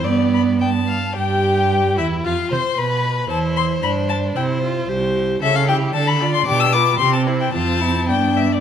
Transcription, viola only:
\new Staff \with { instrumentName = "Viola" } { \time 2/4 \key c \major \tempo 4 = 113 b4. r8 | g'4. e'8 | f'8 c''8 b'4 | e'4 d'4 |
e'8 f'8 g'4 | cis'8 e'8 d'8 f'8 | d'8 f'8 c'8 e'8 | c'4 b4 | }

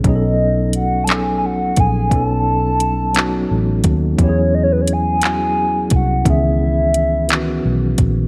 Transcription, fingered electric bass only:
\new Staff \with { instrumentName = "Fingered electric bass" } { \clef bass \time 6/8 \key b \mixolydian \tempo 4. = 58 b,,2~ b,,8 ais,,8 | b,,2 a,,8 dis,8 | e,2~ e,8 c,8 | cis,2 b,,8 ais,,8 | }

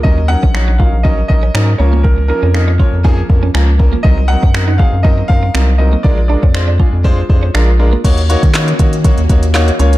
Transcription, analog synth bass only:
\new Staff \with { instrumentName = "Analog synth bass" } { \clef bass \time 4/4 \key ees \dorian \tempo 4 = 120 ees,8. bes,,4 bes,,8. bes,,8 aes,8 des,8~ | des,8. f,4 f,8. f,8 des,4 | c,8. ges,4 ges,8. ges,8 c,4 | bes,,8. f,4 f,8. f,8 bes,,4 |
ees,8. ees8. ees8. ees,16 ees,4 des,8 | }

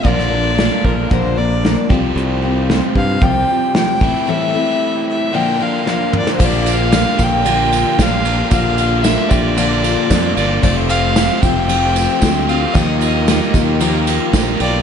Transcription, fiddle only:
\new Staff \with { instrumentName = "Fiddle" } { \time 4/4 \key bes \lydian \tempo 4 = 113 d''4. bes'8 c''8 d''4 r8 | r4. f''8 g''4 g''4 | e''4. e''8 g''8 f''4 d''16. c''32 | d''8 f''4 g''4. f''4 |
f''4 e''8 d''2 d''8 | d''8 f''4 g''2 f''8 | ees''8 ees''4 r2 d''8 | }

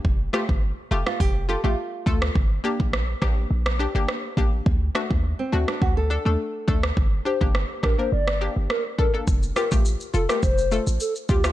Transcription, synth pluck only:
\new Staff \with { instrumentName = "Synth pluck" } { \time 4/4 \key g \minor \tempo 4 = 104 r8 <a f' g'>16 r8. <a f' g'>16 r8. <f' g'>16 <a f' g'>16 r8 <a f' a'>16 r16 | r8 <bes d' g'>16 r8. <bes d' g'>16 r8. <d' g'>16 <bes d' g'>16 r8 <bes d' g'>16 r16 | r8 <a d' fis'>16 r8. <a d' fis'>16 r8. <d' a'>16 <a d' a'>16 r8 <a d' a'>16 r16 | r8 <d' g'>16 <bes d' g'>16 r8 <d' g'>16 <bes d' bes'>16 r8 <bes d' g'>16 r8. <d' a'>16 <bes d' a'>16 |
r8 <f' g'>16 <a f' g'>16 r8 <f' a'>16 <a f' g'>16 r8 <a f' a'>16 r8. <f' g'>16 <a f' g'>16 | }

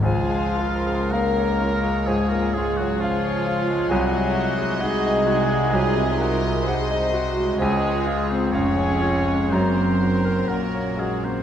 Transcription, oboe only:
\new Staff \with { instrumentName = "Oboe" } { \time 4/4 \key des \major \tempo 4 = 64 f'4 bes'4 aes'16 bes'16 aes'16 ges'16 f'4 | ges'4 aes'2~ aes'8 r8 | aes'8. c''16 des''4 c''4 bes'8 aes'16 c''16 | }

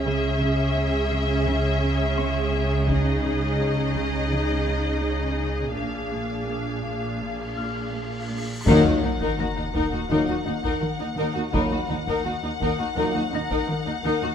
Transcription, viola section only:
\new Staff \with { instrumentName = "Viola section" } { \time 4/4 \tempo 4 = 84 << { gis'1~ | gis'1 | gis'2.~ gis'8 r8 | r1 |
r1 | } \\ { cis'1 | dis'1 | d'2.~ d'8. r16 | ees'16 ees'16 ees'16 ees'16 ees'16 ees'16 ees'16 ees'16 ees'16 ees'16 ees'16 ees'16 r16 ees'16 ees'16 ees'16 |
ees'16 ees'16 ees'16 ees'16 ees'16 ees'16 ees'16 ees'16 ees'16 ees'16 ees'16 ees'16 r16 ees'16 ees'16 ees'16 | } >> }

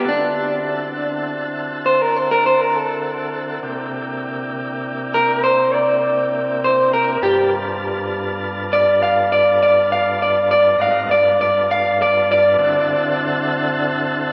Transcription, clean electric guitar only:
\new Staff \with { instrumentName = "Clean electric guitar" } { \time 12/8 \key g \mixolydian \tempo 4. = 67 d'2 r4 c''16 bes'16 c''16 bes'16 c''16 bes'16 a'4.~ | a'4. r4 bes'8 c''8 d''4. c''8 bes'8 | g'8 r2 d''8 f''8 d''8 d''8 f''8 d''8 d''8 | f''8 d''8 d''8 f''8 d''8 d''2. r8 | }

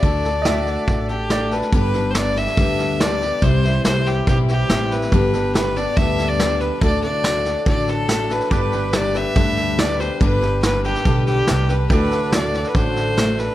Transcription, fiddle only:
\new Staff \with { instrumentName = "Fiddle" } { \time 4/4 \key g \major \tempo 4 = 142 d''2~ d''8 g'4 b'8 | b'8.~ b'32 c''32 d''8 e''4. d''4 | c''4 c''8 g'8 g'8 g'4 b'8~ | b'4 b'8 d''8 e''8. d''8. b'8 |
d''8 d''4. d''8 a'4 b'8 | b'4 d''8 e''4. d''8 c''8 | b'4 b'8 g'4 g'4 b'8 | b'4 \tuplet 3/2 { d''4~ d''16 b'16 } c''4. b'8 | }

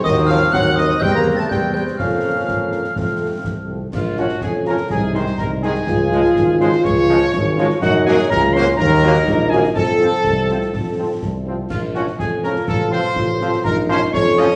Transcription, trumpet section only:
\new Staff \with { instrumentName = "Trumpet section" } { \time 2/4 \key bes \minor \tempo 4 = 124 ees''8 f''8 ges''8 ees''8 | g''16 bes''8 a''16 g''8 g''8 | f''2~ | f''4. r8 |
f'8 ges'8 aes'8 bes'8 | aes'8 c''8 bes'8 aes'8~ | aes'4. c''8 | des''2 |
ges'8 aes'8 bes'8 c''8 | bes'4. aes'8 | a'2~ | a'4 r4 |
f'8 ges'8 aes'8 bes'8 | a'8 c''4. | bes'8 c''8 des''8 ees''8 | }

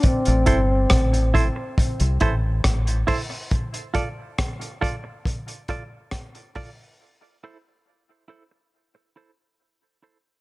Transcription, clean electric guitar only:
\new Staff \with { instrumentName = "Clean electric guitar" } { \time 4/4 \key a \phrygian \tempo 4 = 69 r8 <e' a' c''>8 r8 <e' a' c''>8 r8 <e' a' c''>8 r8 <e' a' c''>8 | r8 <f' a' d''>8 r8 <f' a' d''>8 r8 <f' a' d''>8 r8 <f' a' d''>8 | r8 <e' a' c''>8 r8 <e' a' c''>8 r8 <e' a' c''>8 r8 <e' a' c''>8 | }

